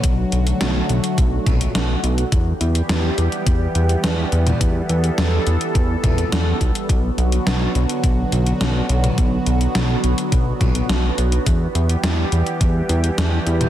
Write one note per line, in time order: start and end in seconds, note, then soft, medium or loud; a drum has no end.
0.00 0.25 B1 medium
0.00 2.28 D3 medium
0.00 2.28 F#3 medium
0.00 2.30 A3 medium
0.00 2.28 F#4 medium
0.00 kick loud
0.00 closed hi-hat medium
0.32 0.53 B1 medium
0.32 closed hi-hat medium
0.47 closed hi-hat medium
0.61 0.82 B1 loud
0.61 snare loud
0.61 closed hi-hat medium
0.89 1.00 B1 medium
0.89 closed hi-hat medium
1.04 closed hi-hat medium
1.18 1.39 B1 medium
1.18 kick loud
1.18 closed hi-hat medium
1.46 1.68 B1 loud
1.46 kick loud
1.46 closed hi-hat medium
1.46 mid tom medium
1.61 closed hi-hat medium
1.75 1.96 B1 medium
1.75 snare loud
1.75 closed hi-hat medium
2.03 2.25 B1 loud
2.03 closed hi-hat medium
2.18 closed hi-hat medium
2.32 2.53 E2 medium
2.32 6.85 E3 medium
2.32 6.85 G3 medium
2.32 6.85 B3 medium
2.32 4.59 G4 medium
2.32 kick loud
2.32 closed hi-hat medium
2.61 2.82 E2 medium
2.61 closed hi-hat medium
2.75 closed hi-hat medium
2.89 3.10 E2 loud
2.89 snare loud
2.89 closed hi-hat medium
3.18 3.28 E2 medium
3.18 closed hi-hat medium
3.32 closed hi-hat medium
3.46 3.68 E2 medium
3.46 kick loud
3.46 closed hi-hat medium
3.75 3.96 E2 medium
3.75 closed hi-hat medium
3.89 closed hi-hat medium
4.04 4.25 E2 loud
4.04 snare loud
4.04 closed hi-hat medium
4.32 4.53 E2 medium
4.32 closed hi-hat medium
4.47 closed hi-hat medium
4.47 mid tom medium
4.61 4.82 E2 medium
4.61 6.87 A4 medium
4.61 kick loud
4.61 closed hi-hat medium
4.89 5.11 E2 medium
4.89 closed hi-hat medium
5.04 closed hi-hat medium
5.18 5.39 E2 medium
5.18 snare loud
5.18 closed hi-hat medium
5.47 5.57 E2 medium
5.47 closed hi-hat medium
5.61 closed hi-hat medium
5.75 5.96 E2 medium
5.75 kick loud
5.75 closed hi-hat medium
6.04 6.25 E2 medium
6.04 kick loud
6.04 closed hi-hat medium
6.04 mid tom medium
6.18 closed hi-hat medium
6.32 6.53 E2 medium
6.32 snare loud
6.32 closed hi-hat medium
6.61 6.71 B1 medium
6.61 kick medium
6.61 closed hi-hat medium
6.75 closed hi-hat medium
6.89 7.10 B1 medium
6.89 11.43 D3 medium
6.89 11.43 F#3 medium
6.89 13.69 B3 medium
6.89 11.43 F#4 medium
6.89 kick loud
6.89 closed hi-hat medium
7.18 7.39 B1 medium
7.18 closed hi-hat medium
7.32 closed hi-hat medium
7.46 7.68 B1 loud
7.46 snare loud
7.46 closed hi-hat medium
7.75 7.86 B1 medium
7.75 closed hi-hat medium
7.89 closed hi-hat medium
8.04 8.25 B1 medium
8.04 kick loud
8.04 closed hi-hat medium
8.32 8.53 B1 medium
8.32 closed hi-hat medium
8.46 closed hi-hat medium
8.61 8.82 B1 loud
8.61 snare loud
8.61 closed hi-hat medium
8.89 9.10 B1 medium
8.89 closed hi-hat medium
9.04 closed hi-hat medium
9.04 mid tom medium
9.18 9.39 B1 medium
9.18 kick loud
9.18 closed hi-hat medium
9.46 9.68 B1 medium
9.46 closed hi-hat medium
9.61 closed hi-hat medium
9.75 9.96 B1 loud
9.75 snare loud
9.75 closed hi-hat medium
10.04 10.14 B1 medium
10.04 closed hi-hat medium
10.18 closed hi-hat medium
10.32 10.53 B1 medium
10.32 kick loud
10.32 closed hi-hat medium
10.61 10.82 B1 loud
10.61 kick loud
10.61 closed hi-hat medium
10.61 mid tom medium
10.75 closed hi-hat medium
10.89 11.10 B1 loud
10.89 snare loud
10.89 closed hi-hat medium
11.18 11.39 B1 medium
11.18 closed hi-hat medium
11.32 closed hi-hat medium
11.46 11.68 E2 medium
11.46 13.69 E3 medium
11.46 13.69 G3 medium
11.46 13.69 G4 medium
11.46 kick loud
11.46 closed hi-hat medium
11.75 11.96 E2 medium
11.75 closed hi-hat medium
11.89 closed hi-hat medium
12.03 12.25 E2 loud
12.03 snare loud
12.03 closed hi-hat medium
12.32 12.43 E2 medium
12.32 closed hi-hat medium
12.47 closed hi-hat medium
12.61 12.82 E2 medium
12.61 kick loud
12.61 closed hi-hat medium
12.89 13.10 E2 medium
12.89 closed hi-hat medium
13.04 closed hi-hat medium
13.18 13.39 E2 loud
13.18 snare loud
13.18 closed hi-hat medium
13.46 13.68 E2 loud
13.46 closed hi-hat medium
13.61 closed hi-hat medium
13.61 mid tom medium